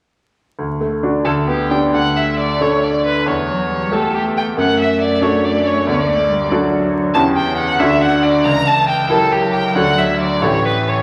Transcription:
0.59 D2
0.80 A3
1.03 D4 F#4
1.25 D2 A4
1.48 B3 G4
1.71 D4 G4 G5
1.94 D2 A3 F#5
2.17 E5
2.39 D5
2.61 A3 D4 A4 C#5
2.84 D5
3.06 B4
3.26 E2 E3 C#5
3.48 F#3
3.71 G3
3.91 A3 G4 A4
4.15 G4
4.37 G5
4.57 F#2 A3 F#5
4.80 E5
5.01 D5
5.22 D4 F#4 A4 C#5
5.45 D5
5.66 C#5
5.86 D2 B3 D5
5.94 C#5
6.00 D5
6.07 A3
6.29 G3
6.50 F#3 D4 F#4 A4
7.14 E2 C#3 C#4 E4 G4 A5
7.36 G5
7.58 F#5
7.79 D2 D3 D4 F#4 A4 E5
8.02 F#5
8.23 D5
8.45 C#2 E3 A#5
8.67 A5
8.89 G5
9.09 F#3 E4 G4 A4 A#4
9.32 G4
9.53 G5
9.75 D2 D4 F#4 A4 F#5
9.98 E5
10.21 D5
10.42 A1 E3 E4 G4 A4 C#5
10.65 B4
10.88 C#5

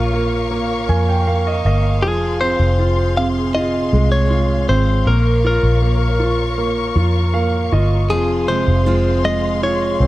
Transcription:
Already playing: A#1 A#3 F4 A#4 C#5 F5 C#6
0.13 A#3
0.51 A#3
0.89 F2 A#3 G#5
1.09 G5
1.27 A#3 F5
1.47 D#5
1.65 G1 A#3 D#5
2.02 F1 F3 G#4 C6
2.41 C4 C5
2.59 F1
2.79 F4
3.17 C3 F5
3.55 F4 D#5
3.93 C2 G#3
4.12 C#5
4.30 F4
4.69 G#1 C4 C5
5.05 A#1 A#3 A#4 C#5 C#6
5.44 F4 A#4
5.63 A#1
5.82 A#3
6.20 F4
6.58 A#3
6.96 F2 F4
7.34 A#3 F5
7.72 G1 F4 D#5
8.09 F1 F2 F3 F4 G#4 F5 C6
8.48 C3 G#3 C5
8.68 F1
8.86 G#3 C4 F4
9.25 G#3 D#5
9.63 F4 C#5
10.00 C2 C4

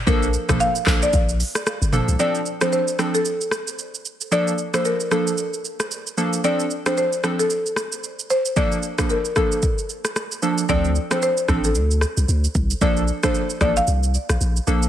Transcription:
0.07 A#1 F3 A#3 D4 A4 A#4, kick, shaker
0.23 shaker
0.33 shaker
0.49 A1 F3 A#3 D4 A4, kick, cross-stick, mid tom, shaker
0.60 F5, shaker
0.75 shaker
0.86 A#1 F3 A#3 D4 A4, kick, cross-stick, clap, shaker
1.02 D5, shaker
1.13 A#1, kick, shaker
1.29 shaker
1.40 open hi-hat, shaker
1.55 cross-stick, shaker
1.67 cross-stick, shaker
1.82 G1, shaker
1.93 F3 A#3 D4 A4, mid tom, shaker
2.08 C2, shaker
2.19 F3 C4 D4 A4 D5, shaker
2.35 shaker
2.46 shaker
2.61 F3 C4 D4 A4 C5, cross-stick, shaker
2.73 C5, shaker
2.88 shaker
2.99 F3 C4 D4 A4, cross-stick, shaker
3.15 A4, shaker
3.25 shaker
3.41 shaker
3.51 cross-stick, shaker
3.67 shaker
3.79 shaker
3.95 shaker
4.05 shaker
4.21 shaker
4.31 F3 A#3 D4 A4 D5, shaker
4.47 shaker
4.58 shaker
4.73 F3 A#3 D4 A4 C5, cross-stick, shaker
4.85 A#4, shaker
5.00 shaker
5.11 F3 A#3 D4 A4, cross-stick, shaker
5.27 shaker
5.38 shaker
5.54 shaker
5.65 shaker
5.80 cross-stick, shaker
5.91 shaker
6.07 shaker
6.17 F3 A#3 D4 A4, shaker
6.33 shaker
6.44 F3 C4 D4 A4 D5, shaker
6.60 shaker
6.70 shaker
6.86 F3 C4 D4 A4 C5, cross-stick, shaker
6.97 C5, shaker
7.13 shaker
7.23 F3 C4 D4 A4, cross-stick, shaker
7.39 A4, shaker
7.50 shaker
7.66 shaker
7.76 cross-stick, shaker
7.92 shaker
8.04 shaker
8.19 shaker
8.30 C5, shaker
8.46 shaker
8.56 F3 A#3 D4 A4 D5, kick, shaker
8.72 shaker
8.83 shaker
8.98 F3 A#3 D4 A4, kick, cross-stick, shaker
9.10 A#4, shaker
9.25 shaker
9.36 F3 A#3 D4 A4, kick, cross-stick, shaker
9.52 shaker
9.62 kick, shaker
9.78 shaker
9.89 shaker
10.05 cross-stick, shaker
10.16 cross-stick, shaker
10.32 shaker
10.42 F3 A#3 D4 A4, shaker
10.58 shaker
10.69 D2 F3 C4 D4 A4 D5, kick, shaker
10.85 shaker
10.95 shaker
11.10 F3 C4 D4 A4 C5, cross-stick, shaker
11.22 C5, shaker
11.37 shaker
11.48 A1 F3 C4 D4 A4, kick, cross-stick, shaker
11.64 A4, shaker
11.75 D2, shaker
11.91 shaker
12.01 cross-stick, shaker
12.17 C2, shaker
12.28 D2, shaker
12.44 shaker
12.55 C2, kick, shaker
12.70 shaker
12.81 A#1 F3 A#3 D4 A4 D5, kick, shaker
12.97 shaker
13.08 shaker
13.23 F3 A#3 D4 A4 C5, kick, cross-stick, shaker
13.35 shaker
13.50 shaker
13.61 A1 F3 A#3 D4 A4 D5, kick, cross-stick, shaker
13.77 F5, shaker
13.87 C2, shaker
14.03 shaker
14.14 shaker
14.29 A#1, cross-stick, shaker
14.41 A#1, shaker
14.56 shaker
14.67 A#1 F3 A#3 D4 A4, shaker
14.83 shaker

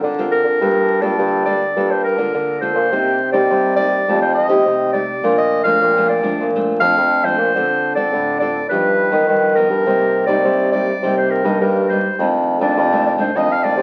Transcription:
Already playing: C4 F4 A#4
0.03 D3
0.18 C4 F4 A#4
0.32 A#4
0.44 D3
0.61 G2 G3 A#3 F4 A4
1.01 G2 A#3 F4 A4 D5
1.18 G2 D3
1.45 A#3 F4 A4 D5
1.76 G2 G3 A#3 F4 A4
1.91 C5
2.04 A#4
2.18 D3 A#3 F4
2.34 D3
2.61 A#3 F4 A4 C5
2.75 A#2
2.92 C3 A#3 D#4 G4
3.32 C3 A#3 D#4 G4 D5
3.50 G2 C3
3.76 A#3 D#4 G4 D5
4.08 F2 F3 A3 D#4 G4
4.22 C5
4.35 D#5
4.49 C3 A3 D#4 G4
4.66 C3
4.93 A3 D#4 G4 D5
5.24 A#2 F3 A3 D4
5.38 D#5
5.64 A#2 F3 A3 D4 F5
5.81 F2 A#2
5.97 F3 A3 D4
6.09 D5
6.23 F3 A3 D4
6.39 A#2
6.55 F3 A3 D4
6.80 F2 F3 A3 D4 F5
6.97 F2
7.25 F3 A3 D4 C5
7.38 A#2
7.55 D3 C4 F4 A4
7.95 D3 C4 F4 A4 D5
8.13 A2 D3
8.40 C4 F4 A4 D5
8.69 G2 F3 B3 D#4 B4
9.12 D#3 F3 B3 D#4
9.28 G2 D#3
9.55 F3 B3 D#4 A#4
9.69 G2
9.86 C3 G3 A#3 D#4
10.27 C3 G3 A#3 D#4 D5
10.44 G2 C3
10.72 G3 A#3 D#4 D5
11.02 C3 G3 A#3 D#4
11.18 C5
11.30 A#4
11.44 G2 G3 A#3 D#4
11.60 G2 A#4
11.89 G3 A#3 D#4 C5
12.19 F2 D#3 A3 D4
12.60 F2 D#3 A3 D4 D5
12.77 F2 C3
12.92 D#3 A3 D4
13.06 D5
13.18 D#3 A3 D4 C5
13.35 F2 D#3 A3 D4 D#5
13.52 F5
13.63 D#3 A3 D4 D5
13.77 C3

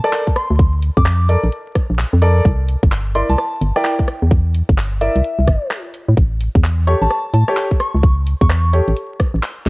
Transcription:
0.04 A4 A#4 D5 A5, cross-stick
0.13 clap, closed hi-hat
0.27 kick
0.36 C6, cross-stick, open hi-hat
0.51 D2
0.59 kick, closed hi-hat
0.82 open hi-hat
0.97 F2 D6, kick, closed hi-hat
1.06 clap, closed hi-hat
1.29 A4 A#4 D5, open hi-hat
1.44 A#1, closed hi-hat
1.52 closed hi-hat
1.75 kick, cross-stick, open hi-hat
1.90 A#1
1.99 clap, closed hi-hat
2.13 F2
2.22 A4 A#4 D5, open hi-hat
2.45 C2, kick, closed hi-hat
2.69 open hi-hat
2.83 G1, kick, closed hi-hat
2.92 clap, closed hi-hat
3.15 E4 A#4 D5 C6, open hi-hat
3.30 C2 A5, closed hi-hat
3.38 A5, cross-stick, closed hi-hat
3.61 G1, open hi-hat
3.76 E4 A#4 D5 G5, cross-stick
3.85 G5, clap, closed hi-hat
3.99 kick
4.08 cross-stick, open hi-hat
4.22 E2
4.31 kick, closed hi-hat
4.54 open hi-hat
4.69 G1, kick, closed hi-hat
4.78 clap, closed hi-hat
5.01 E4 A#4 D5 E5, open hi-hat
5.16 C2, closed hi-hat
5.24 closed hi-hat
5.39 C2
5.47 G1, kick, cross-stick, open hi-hat
5.71 clap, closed hi-hat
5.94 open hi-hat
6.09 A2
6.17 A1, kick, closed hi-hat
6.41 open hi-hat
6.55 E2, kick, closed hi-hat
6.64 clap, closed hi-hat
6.87 G4 A4 C#5 C#6, open hi-hat
7.02 A1 A5, closed hi-hat
7.10 A5, cross-stick, closed hi-hat
7.34 A2 A5, open hi-hat
7.48 G4 A4 C#5 A5, cross-stick
7.57 clap, closed hi-hat
7.71 kick
7.80 C#6, cross-stick, open hi-hat
7.95 C#2
8.03 kick, closed hi-hat
8.27 open hi-hat
8.41 E2 C#6, kick, closed hi-hat
8.50 cross-stick, clap, closed hi-hat
8.73 G4 A4 C#5, open hi-hat
8.88 A1, closed hi-hat
8.96 closed hi-hat
9.20 kick, cross-stick, open hi-hat
9.34 A1
9.43 clap, closed hi-hat
9.66 C#2, snare, open hi-hat

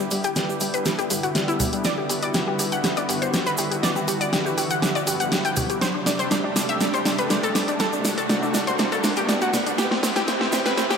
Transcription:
Already playing: D3 G3 B3 E4 G4, riser
0.11 G1 G3, open hi-hat, shaker
0.24 G4, closed hi-hat, shaker
0.36 G1 G3, snare, closed hi-hat, shaker
0.49 G3, shaker
0.60 G1 G3, open hi-hat, shaker
0.74 B4, closed hi-hat, shaker
0.85 G1 G3, snare, closed hi-hat, shaker
0.99 G1 G4, closed hi-hat, shaker
1.10 G2 G3, open hi-hat, shaker
1.23 F#4, closed hi-hat, shaker
1.35 G1 G3, snare, closed hi-hat, shaker
1.48 E4, closed hi-hat, shaker
1.60 G1 G3, open hi-hat, low conga, shaker
1.73 G3, closed hi-hat, shaker
1.84 G1 F#4 D5, snare, closed hi-hat, shaker
1.98 G4
2.09 G1 G4, open hi-hat, shaker
2.22 D5, closed hi-hat, shaker
2.34 G1 G4, snare, closed hi-hat, shaker
2.48 G4
2.59 G1 G4, open hi-hat, shaker
2.72 F#5, closed hi-hat, shaker
2.84 G1 G4, snare, closed hi-hat, shaker
2.97 G1 D5, closed hi-hat, shaker
3.09 G2 G4, open hi-hat, shaker
3.22 C5, closed hi-hat, shaker
3.34 G1 G4, snare, closed hi-hat, shaker
3.46 B4, closed hi-hat, shaker
3.57 G1 G4, open hi-hat, shaker
3.71 G4, closed hi-hat, shaker
3.83 G1 D5, snare, closed hi-hat, shaker
3.96 G4, shaker
4.08 G1 G4, open hi-hat, shaker
4.21 D5, closed hi-hat, shaker
4.33 G1 G4, snare, closed hi-hat, shaker
4.46 G4, shaker
4.57 G1 G4, open hi-hat, shaker
4.70 F#5, closed hi-hat, shaker
4.82 G1 G4, snare, closed hi-hat, shaker
4.95 G1 D5, closed hi-hat, shaker
5.07 G2 G4, open hi-hat, shaker
5.20 F#5, closed hi-hat, shaker
5.32 G1 G4, snare, closed hi-hat, shaker
5.45 G5, closed hi-hat, shaker
5.56 G1 G4, open hi-hat, low conga, shaker
5.70 G4, closed hi-hat, shaker
5.81 D2 C3 G3 A3 D4 G4 C5, snare, closed hi-hat, shaker
5.95 D4
6.06 D2 D4, snare, open hi-hat, shaker
6.19 C5, closed hi-hat, shaker
6.31 D2 D4, snare, closed hi-hat, shaker
6.44 D4
6.56 D2 D4, snare, open hi-hat, shaker
6.69 E5, closed hi-hat, shaker
6.81 D2 D4, snare, closed hi-hat, shaker
6.94 D2 C5, closed hi-hat, shaker
7.05 D1 D4, snare, open hi-hat, shaker
7.18 B4, closed hi-hat, shaker
7.30 D2 D4, snare, closed hi-hat, shaker
7.43 A4, closed hi-hat, shaker
7.55 D2 D4, snare, open hi-hat, shaker
7.68 D4, closed hi-hat, shaker
7.80 D2 F#4 A4, snare, closed hi-hat, shaker
7.93 D4, shaker
8.05 D2 D4, snare, open hi-hat, shaker
8.18 A4, closed hi-hat, shaker
8.29 D2 D4, snare, closed hi-hat, shaker
8.42 D4, shaker
8.54 D2 D4, snare, open hi-hat, shaker
8.67 C5, closed hi-hat, shaker
8.79 D2 D4, snare, closed hi-hat, shaker
8.92 D2 A4, closed hi-hat, shaker
9.04 D4, snare, open hi-hat, shaker
9.16 G4, closed hi-hat, shaker
9.29 D2 D4, snare, closed hi-hat, shaker
9.41 F#4, closed hi-hat, shaker
9.53 D2 D4, snare, open hi-hat, low conga, shaker
9.66 D4, closed hi-hat, shaker
9.78 C2 C3 B3 E4 G4, snare, closed hi-hat, shaker
9.91 C4, snare
10.03 C2 C4, snare, open hi-hat, shaker
10.16 G4, snare, closed hi-hat, shaker
10.28 C2 C4, snare, closed hi-hat, shaker
10.41 C4, snare
10.52 C2 C4, snare, open hi-hat, shaker
10.66 B4, snare, closed hi-hat, shaker
10.77 C2 C4, snare, closed hi-hat, shaker
10.90 C2 G4, snare, closed hi-hat, shaker

